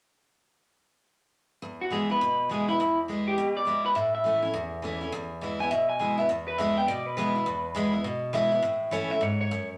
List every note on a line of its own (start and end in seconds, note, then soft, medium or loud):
1.62 2.19 E2 medium
1.81 1.92 F#4 medium
1.90 2.09 E3 medium
1.90 2.10 G#3 medium
1.90 2.10 B3 medium
1.90 2.08 E4 medium
1.90 2.10 G#4 medium
2.09 2.21 B3 soft
2.09 2.20 E4 medium
2.09 2.49 B4 medium
2.21 2.77 B2 medium
2.49 2.68 E3 medium
2.49 2.68 G#3 medium
2.49 2.69 B3 medium
2.49 2.67 E4 medium
2.49 2.68 G#4 medium
2.68 2.80 B3 soft
2.68 2.79 E4 medium
2.68 2.79 E4 loud
2.80 3.36 E2 medium
2.80 2.98 E4 loud
3.08 3.36 E3 medium
3.08 3.37 G#3 medium
3.08 3.37 B3 medium
3.08 3.38 E4 medium
3.28 3.56 G4 loud
3.38 3.94 B2 medium
3.57 3.85 D5 medium
3.65 3.94 E3 medium
3.65 3.95 G#3 medium
3.65 3.95 B3 medium
3.65 3.95 E4 medium
3.86 3.96 B4 medium
3.95 4.52 A2 medium
3.95 4.14 E5 medium
4.15 4.99 E5 medium
4.24 4.42 E3 medium
4.24 4.43 A3 medium
4.24 4.43 C#4 medium
4.24 4.41 E4 medium
4.42 4.54 C#4 soft
4.42 4.53 E4 medium
4.54 5.10 E2 medium
4.82 5.01 E3 medium
4.82 5.01 A3 medium
4.82 5.02 C#4 medium
4.82 5.00 E4 medium
5.01 5.13 C#4 soft
5.01 5.12 E4 medium
5.12 5.69 E2 medium
5.41 5.59 E3 medium
5.41 5.60 G#3 medium
5.41 5.60 B3 medium
5.41 5.59 E4 medium
5.60 5.72 B3 soft
5.60 5.70 E4 medium
5.60 5.71 G#5 loud
5.71 6.27 B2 medium
5.71 5.89 E5 medium
5.89 5.99 G#5 medium
5.99 6.18 E3 medium
5.99 6.18 G#3 medium
5.99 6.18 B3 medium
5.99 6.16 E4 medium
5.99 6.18 G#5 medium
6.18 6.29 B3 soft
6.18 6.28 E4 medium
6.18 6.29 E5 medium
6.29 6.85 E2 medium
6.48 6.58 B4 medium
6.58 6.76 E3 medium
6.58 6.77 G#3 medium
6.58 6.77 B3 medium
6.58 6.76 E4 medium
6.58 6.76 E5 medium
6.77 6.88 B3 soft
6.77 6.87 E4 medium
6.77 6.88 G5 medium
6.88 7.44 B2 medium
6.88 7.06 D5 medium
7.06 7.16 B4 medium
7.17 7.35 E3 medium
7.17 7.35 G#3 medium
7.17 7.36 B3 loud
7.17 7.34 E4 medium
7.17 8.02 B4 medium
7.36 7.47 B3 soft
7.36 7.46 E4 medium
7.46 8.03 E2 medium
7.75 7.93 E3 medium
7.75 7.93 G#3 medium
7.75 7.94 B3 medium
7.75 7.92 E4 loud
7.93 8.05 B3 soft
7.93 8.04 E4 medium
8.04 8.61 B2 medium
8.33 8.51 E3 medium
8.33 8.52 G#3 medium
8.33 8.52 B3 medium
8.33 8.51 E4 loud
8.33 8.91 E5 loud
8.52 8.64 B3 soft
8.52 8.63 E4 medium
8.62 9.19 A2 medium
8.91 9.10 E3 medium
8.91 9.10 A3 medium
8.91 9.11 C#4 medium
8.91 9.09 E4 medium
8.91 9.11 C#5 medium
9.10 9.22 C#4 soft
9.10 9.21 E4 medium
9.10 9.22 E5 medium
9.21 9.50 G#2 medium
9.21 9.39 C#5 medium
9.41 9.69 C#5 loud
9.51 9.78 F#2 medium